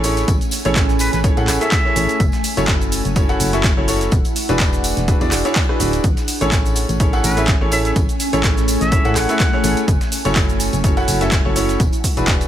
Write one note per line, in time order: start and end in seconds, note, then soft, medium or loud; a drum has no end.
0.00 0.25 A1 medium
0.00 4.12 A3 medium
0.00 2.92 C#4 medium
0.00 0.31 E4 medium
0.00 0.31 G#4 medium
0.00 0.31 A4 medium
0.00 0.31 C#5 loud
0.00 2.97 G#5 medium
0.00 open hi-hat loud
0.00 tambourine loud
0.04 0.31 C#4 medium
0.04 closed hi-hat medium
0.04 shaker medium
0.17 snare soft
0.17 closed hi-hat medium
0.17 tambourine soft
0.17 shaker soft
0.28 0.39 A1 loud
0.28 kick loud
0.28 closed hi-hat medium
0.28 tambourine medium
0.28 shaker soft
0.41 closed hi-hat soft
0.41 tambourine soft
0.41 shaker soft
0.51 closed hi-hat medium
0.51 open hi-hat loud
0.51 tambourine loud
0.51 shaker medium
0.65 1.10 A1 medium
0.65 1.21 C#4 loud
0.65 1.21 E4 medium
0.65 1.21 G#4 medium
0.65 1.21 A4 medium
0.65 1.21 C#5 loud
0.65 closed hi-hat medium
0.65 tambourine soft
0.65 shaker soft
0.76 kick loud
0.76 snare loud
0.76 clap loud
0.76 closed hi-hat medium
0.76 tambourine medium
0.76 shaker soft
0.89 snare soft
0.89 tambourine soft
0.89 shaker soft
0.99 1.08 B4 medium
0.99 closed hi-hat medium
0.99 open hi-hat loud
0.99 tambourine medium
0.99 shaker medium
1.13 1.32 A1 medium
1.13 1.20 B4 medium
1.13 snare soft
1.13 closed hi-hat medium
1.13 tambourine soft
1.13 shaker soft
1.24 1.35 C#4 medium
1.24 1.35 E4 medium
1.24 1.35 G#4 medium
1.24 1.35 A4 medium
1.24 1.35 C#5 medium
1.24 kick loud
1.24 closed hi-hat medium
1.24 tambourine medium
1.24 shaker soft
1.37 1.50 A2 loud
1.37 1.58 C#4 medium
1.37 1.58 E4 medium
1.37 1.58 G#4 medium
1.37 1.58 A4 medium
1.37 1.58 F#5 loud
1.37 closed hi-hat soft
1.37 tambourine soft
1.48 1.59 A1 medium
1.48 cross-stick medium
1.48 clap medium
1.48 closed hi-hat medium
1.48 open hi-hat loud
1.48 tambourine loud
1.48 shaker medium
1.61 1.77 C#4 medium
1.61 1.77 E4 medium
1.61 1.77 G#4 medium
1.61 1.77 A4 medium
1.61 2.25 E5 loud
1.61 1.77 E5 loud
1.61 snare soft
1.61 closed hi-hat medium
1.61 tambourine soft
1.61 shaker soft
1.72 kick loud
1.72 snare loud
1.72 clap loud
1.72 closed hi-hat medium
1.72 tambourine medium
1.72 shaker soft
1.85 1.94 C#4 medium
1.85 1.94 E4 medium
1.85 1.94 G#4 medium
1.85 1.94 A4 medium
1.85 1.94 C#5 loud
1.85 snare soft
1.96 2.07 A1 loud
1.96 2.19 C#4 medium
1.96 2.19 E4 medium
1.96 2.19 G#4 medium
1.96 2.19 A4 medium
1.96 2.19 C#5 loud
1.96 closed hi-hat medium
1.96 open hi-hat loud
1.96 tambourine medium
1.96 shaker medium
2.09 closed hi-hat soft
2.09 closed hi-hat medium
2.09 tambourine soft
2.09 shaker soft
2.20 2.31 F#1 loud
2.20 4.89 E4 medium
2.20 kick loud
2.20 closed hi-hat medium
2.20 tambourine medium
2.20 shaker soft
2.32 snare medium
2.32 closed hi-hat soft
2.32 tambourine soft
2.32 shaker soft
2.44 closed hi-hat medium
2.44 open hi-hat loud
2.44 tambourine medium
2.44 shaker medium
2.57 3.02 F#1 medium
2.57 3.13 C#4 loud
2.57 3.13 E4 medium
2.57 3.13 F#4 medium
2.57 3.13 A4 medium
2.57 3.13 C#5 loud
2.57 closed hi-hat medium
2.57 tambourine soft
2.57 shaker soft
2.68 kick loud
2.68 snare loud
2.68 clap loud
2.68 closed hi-hat medium
2.68 tambourine medium
2.68 shaker soft
2.81 tambourine soft
2.81 shaker soft
2.92 closed hi-hat medium
2.92 open hi-hat loud
2.92 tambourine medium
2.92 shaker medium
3.05 3.37 F#1 medium
3.05 6.89 F#5 medium
3.05 closed hi-hat medium
3.05 tambourine soft
3.05 shaker soft
3.16 3.27 C#4 medium
3.16 3.27 E4 medium
3.16 3.27 F#4 medium
3.16 3.27 A4 medium
3.16 3.27 C#5 loud
3.16 kick loud
3.16 closed hi-hat medium
3.16 tambourine medium
3.16 shaker soft
3.29 3.50 C#4 loud
3.29 3.50 E4 medium
3.29 3.50 F#4 medium
3.29 3.50 A4 medium
3.29 3.50 F#5 loud
3.29 closed hi-hat soft
3.29 tambourine soft
3.40 3.74 F#1 loud
3.40 closed hi-hat medium
3.40 open hi-hat loud
3.40 tambourine loud
3.40 shaker medium
3.53 3.69 C#4 loud
3.53 3.69 E4 medium
3.53 3.69 F#4 medium
3.53 3.69 A4 medium
3.53 3.69 E5 loud
3.53 snare medium
3.53 closed hi-hat medium
3.53 tambourine soft
3.53 shaker soft
3.64 kick loud
3.64 snare loud
3.64 clap loud
3.64 closed hi-hat medium
3.64 tambourine medium
3.64 shaker soft
3.77 4.09 F#1 medium
3.77 3.86 C#4 medium
3.77 3.86 E4 medium
3.77 3.86 F#4 medium
3.77 3.86 A4 medium
3.77 3.86 C#5 medium
3.88 4.11 C#4 medium
3.88 4.11 E4 medium
3.88 4.11 F#4 medium
3.88 4.11 A4 medium
3.88 4.11 C#5 loud
3.88 closed hi-hat medium
3.88 open hi-hat loud
3.88 tambourine medium
3.88 shaker medium
4.01 snare soft
4.01 closed hi-hat medium
4.01 tambourine soft
4.01 shaker soft
4.11 4.23 E1 loud
4.11 6.04 D4 medium
4.11 kick loud
4.11 closed hi-hat medium
4.11 tambourine soft
4.11 shaker soft
4.25 closed hi-hat soft
4.25 tambourine soft
4.25 shaker soft
4.36 closed hi-hat medium
4.36 open hi-hat loud
4.36 tambourine medium
4.36 shaker medium
4.49 4.94 E1 medium
4.49 5.05 D4 loud
4.49 5.05 E4 medium
4.49 5.05 F#4 medium
4.49 5.05 G#4 medium
4.49 5.05 B4 loud
4.49 closed hi-hat medium
4.49 tambourine soft
4.49 shaker soft
4.60 kick loud
4.60 snare loud
4.60 clap loud
4.60 closed hi-hat medium
4.60 tambourine medium
4.60 shaker soft
4.73 snare soft
4.73 tambourine soft
4.73 shaker soft
4.84 closed hi-hat medium
4.84 open hi-hat loud
4.84 tambourine loud
4.84 shaker medium
4.97 5.16 E1 medium
4.97 snare soft
4.97 closed hi-hat medium
4.97 tambourine soft
4.97 shaker soft
5.08 5.19 D4 medium
5.08 5.19 E4 medium
5.08 5.19 F#4 medium
5.08 5.19 G#4 medium
5.08 5.19 B4 medium
5.08 kick loud
5.08 closed hi-hat medium
5.08 tambourine medium
5.08 shaker soft
5.21 5.33 E2 loud
5.21 5.42 D4 loud
5.21 5.42 E4 medium
5.21 5.42 F#4 medium
5.21 5.42 G#4 medium
5.21 5.42 D5 loud
5.21 closed hi-hat soft
5.21 tambourine soft
5.31 5.43 E1 medium
5.31 cross-stick medium
5.31 clap medium
5.31 closed hi-hat medium
5.31 open hi-hat loud
5.31 tambourine medium
5.31 shaker medium
5.45 5.61 D4 medium
5.45 5.61 E4 medium
5.45 5.61 F#4 medium
5.45 5.61 G#4 medium
5.45 5.61 C#5 loud
5.45 snare soft
5.45 closed hi-hat medium
5.45 tambourine soft
5.45 shaker soft
5.56 kick loud
5.56 snare loud
5.56 clap loud
5.56 closed hi-hat medium
5.56 tambourine medium
5.56 shaker soft
5.69 5.78 D4 medium
5.69 5.78 E4 medium
5.69 5.78 F#4 medium
5.69 5.78 G#4 medium
5.69 5.78 B4 loud
5.69 cross-stick medium
5.69 snare soft
5.80 6.00 D1 loud
5.80 6.03 D4 medium
5.80 6.03 E4 medium
5.80 6.03 F#4 medium
5.80 6.03 G#4 medium
5.80 6.03 B4 loud
5.80 closed hi-hat medium
5.80 open hi-hat loud
5.80 tambourine loud
5.80 shaker medium
5.93 closed hi-hat soft
5.93 tambourine soft
5.93 shaker soft
6.04 6.15 A1 loud
6.04 10.65 C#4 medium
6.04 kick loud
6.04 closed hi-hat medium
6.04 tambourine medium
6.04 shaker soft
6.17 snare medium
6.17 closed hi-hat soft
6.17 tambourine soft
6.17 shaker soft
6.25 10.65 G#5 medium
6.25 closed hi-hat medium
6.25 open hi-hat loud
6.25 tambourine medium
6.25 shaker medium
6.41 6.86 A1 medium
6.41 11.80 A3 medium
6.41 6.97 C#4 loud
6.41 6.97 E4 medium
6.41 6.97 G#4 medium
6.41 6.97 A4 medium
6.41 6.97 C#5 loud
6.41 closed hi-hat medium
6.41 tambourine soft
6.41 shaker soft
6.52 kick loud
6.52 snare loud
6.52 clap loud
6.52 closed hi-hat medium
6.52 tambourine medium
6.52 shaker soft
6.66 tambourine soft
6.66 shaker soft
6.76 closed hi-hat medium
6.76 open hi-hat loud
6.76 tambourine medium
6.76 shaker medium
6.89 7.21 A1 medium
6.89 closed hi-hat soft
6.89 tambourine soft
6.89 shaker soft
7.00 7.11 C#4 medium
7.00 7.11 E4 medium
7.00 7.11 G#4 medium
7.00 7.11 A4 medium
7.00 7.11 C#5 medium
7.00 kick loud
7.00 closed hi-hat medium
7.00 tambourine medium
7.00 shaker soft
7.13 7.34 C#4 medium
7.13 7.34 E4 medium
7.13 7.34 G#4 medium
7.13 7.34 A4 medium
7.13 7.34 F#5 loud
7.13 closed hi-hat soft
7.13 tambourine soft
7.24 7.58 A1 loud
7.24 7.45 B4 medium
7.24 closed hi-hat medium
7.24 open hi-hat loud
7.24 tambourine loud
7.24 shaker medium
7.37 7.53 C#4 loud
7.37 7.53 E4 medium
7.37 7.53 G#4 medium
7.37 7.53 A4 medium
7.37 7.53 E5 loud
7.37 snare soft
7.37 closed hi-hat medium
7.37 tambourine soft
7.37 shaker soft
7.48 kick loud
7.48 snare loud
7.48 clap loud
7.48 closed hi-hat medium
7.48 tambourine medium
7.48 shaker soft
7.61 7.93 A1 medium
7.61 7.70 C#4 medium
7.61 7.70 E4 medium
7.61 7.70 G#4 medium
7.61 7.70 A4 medium
7.61 7.70 C#5 loud
7.72 7.99 C#4 medium
7.72 7.99 E4 medium
7.72 7.99 G#4 medium
7.72 7.99 A4 medium
7.72 7.99 C#5 loud
7.72 7.80 E5 medium
7.72 closed hi-hat medium
7.72 open hi-hat loud
7.72 tambourine medium
7.72 shaker medium
7.85 7.92 E5 medium
7.85 snare soft
7.85 closed hi-hat soft
7.85 tambourine soft
7.85 shaker soft
7.96 8.07 A1 loud
7.96 kick loud
7.96 closed hi-hat medium
7.96 tambourine medium
7.96 shaker soft
8.09 closed hi-hat soft
8.09 tambourine soft
8.09 shaker soft
8.20 closed hi-hat medium
8.20 open hi-hat loud
8.20 tambourine medium
8.20 shaker medium
8.33 8.78 A1 medium
8.33 8.89 C#4 loud
8.33 8.89 E4 medium
8.33 8.89 G#4 medium
8.33 8.89 A4 medium
8.33 8.89 C#5 loud
8.33 closed hi-hat medium
8.33 tambourine soft
8.33 shaker soft
8.44 kick loud
8.44 snare loud
8.44 clap loud
8.44 closed hi-hat medium
8.44 tambourine medium
8.44 shaker soft
8.57 snare soft
8.57 tambourine soft
8.57 shaker soft
8.68 closed hi-hat medium
8.68 open hi-hat loud
8.68 tambourine loud
8.68 shaker medium
8.81 9.00 A1 medium
8.81 9.14 E5 medium
8.81 snare soft
8.81 closed hi-hat medium
8.81 tambourine soft
8.81 shaker soft
8.92 9.03 C#4 medium
8.92 9.03 E4 medium
8.92 9.03 G#4 medium
8.92 9.03 A4 medium
8.92 9.03 C#5 loud
8.92 kick loud
8.92 closed hi-hat medium
8.92 tambourine medium
8.92 shaker soft
9.05 9.17 A2 loud
9.05 9.26 C#4 medium
9.05 9.26 E4 medium
9.05 9.26 G#4 medium
9.05 9.26 A4 medium
9.05 9.26 F#5 loud
9.05 closed hi-hat soft
9.05 tambourine soft
9.16 9.27 A1 medium
9.16 9.84 F#5 medium
9.16 cross-stick medium
9.16 clap medium
9.16 closed hi-hat medium
9.16 open hi-hat loud
9.16 tambourine medium
9.16 shaker medium
9.29 9.45 C#4 medium
9.29 9.45 E4 medium
9.29 9.45 G#4 medium
9.29 9.45 A4 medium
9.29 9.45 E5 loud
9.29 snare soft
9.29 closed hi-hat medium
9.29 tambourine soft
9.29 shaker soft
9.40 kick loud
9.40 snare loud
9.40 clap loud
9.40 closed hi-hat medium
9.40 tambourine medium
9.40 shaker soft
9.53 9.62 C#4 medium
9.53 9.62 E4 medium
9.53 9.62 G#4 medium
9.53 9.62 A4 medium
9.53 9.62 C#5 loud
9.53 snare soft
9.64 9.75 A1 loud
9.64 9.87 C#4 medium
9.64 9.87 E4 medium
9.64 9.87 G#4 medium
9.64 9.87 A4 medium
9.64 9.87 C#5 loud
9.64 closed hi-hat medium
9.64 open hi-hat loud
9.64 tambourine medium
9.64 shaker medium
9.77 closed hi-hat soft
9.77 closed hi-hat medium
9.77 tambourine soft
9.77 shaker soft
9.88 9.99 F#1 loud
9.88 12.47 E4 medium
9.88 kick loud
9.88 closed hi-hat medium
9.88 tambourine soft
9.88 shaker soft
10.01 snare medium
10.01 closed hi-hat soft
10.01 tambourine soft
10.01 shaker soft
10.12 closed hi-hat medium
10.12 open hi-hat loud
10.12 tambourine loud
10.12 shaker medium
10.25 10.70 F#1 medium
10.25 10.81 C#4 loud
10.25 10.81 E4 medium
10.25 10.81 F#4 medium
10.25 10.81 A4 medium
10.25 10.81 C#5 loud
10.25 closed hi-hat medium
10.25 tambourine soft
10.25 shaker soft
10.36 kick loud
10.36 snare loud
10.36 clap loud
10.36 closed hi-hat medium
10.36 tambourine medium
10.36 shaker soft
10.49 tambourine soft
10.49 shaker soft
10.60 closed hi-hat medium
10.60 open hi-hat loud
10.60 tambourine medium
10.60 shaker medium
10.73 11.05 F#1 medium
10.73 12.48 F#5 medium
10.73 closed hi-hat medium
10.73 tambourine soft
10.73 shaker soft
10.84 10.95 C#4 medium
10.84 10.95 E4 medium
10.84 10.95 F#4 medium
10.84 10.95 A4 medium
10.84 10.95 C#5 medium
10.84 kick loud
10.84 closed hi-hat medium
10.84 tambourine soft
10.84 shaker soft
10.97 11.18 C#4 loud
10.97 11.18 E4 medium
10.97 11.18 F#4 medium
10.97 11.18 A4 medium
10.97 11.18 F#5 loud
10.97 closed hi-hat soft
10.97 tambourine soft
11.08 11.42 F#1 loud
11.08 closed hi-hat medium
11.08 open hi-hat loud
11.08 tambourine medium
11.08 shaker medium
11.21 11.37 C#4 medium
11.21 11.37 E4 medium
11.21 11.37 F#4 medium
11.21 11.37 A4 medium
11.21 11.37 E5 loud
11.21 snare medium
11.21 closed hi-hat medium
11.21 tambourine soft
11.21 shaker soft
11.32 kick loud
11.32 snare loud
11.32 clap loud
11.32 closed hi-hat medium
11.32 tambourine medium
11.32 shaker soft
11.45 11.77 F#1 medium
11.45 11.54 C#4 medium
11.45 11.54 E4 medium
11.45 11.54 F#4 medium
11.45 11.54 A4 medium
11.45 11.54 C#5 loud
11.56 11.79 C#4 loud
11.56 11.79 E4 medium
11.56 11.79 F#4 medium
11.56 11.79 A4 medium
11.56 11.79 C#5 loud
11.56 closed hi-hat medium
11.56 open hi-hat loud
11.56 tambourine medium
11.56 shaker medium
11.69 snare soft
11.69 closed hi-hat medium
11.69 tambourine soft
11.69 shaker soft
11.80 11.91 E1 loud
11.80 12.48 D4 medium
11.80 kick loud
11.80 closed hi-hat medium
11.80 tambourine soft
11.80 shaker soft
11.93 closed hi-hat soft
11.93 tambourine soft
11.93 shaker soft
12.04 kick medium
12.04 closed hi-hat medium
12.04 open hi-hat loud
12.04 tambourine medium
12.04 shaker medium
12.17 12.48 E1 medium
12.17 12.48 D4 loud
12.17 12.48 E4 medium
12.17 12.48 F#4 medium
12.17 12.48 G#4 medium
12.17 12.48 B4 loud
12.17 closed hi-hat medium
12.17 tambourine soft
12.17 shaker soft
12.28 kick loud
12.28 snare loud
12.28 clap loud
12.28 closed hi-hat medium
12.28 tambourine medium
12.28 shaker soft
12.41 snare soft
12.41 closed hi-hat soft
12.41 tambourine soft
12.41 shaker soft